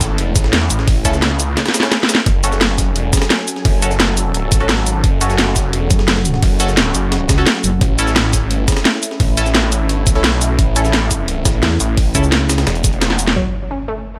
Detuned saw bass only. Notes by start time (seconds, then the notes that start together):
Already playing: A1
0.36 A1
0.53 E2
0.70 A1
1.05 C#2
2.26 F#1
2.86 F1
3.65 F#1
4.52 G#1
5.04 F#1
5.64 F1
6.43 F#1
6.95 F#1
7.81 A1
8.41 G#1
9.20 A1
9.80 G#1
10.07 B1
10.59 A1
11.45 A1
11.80 A1
12.67 E1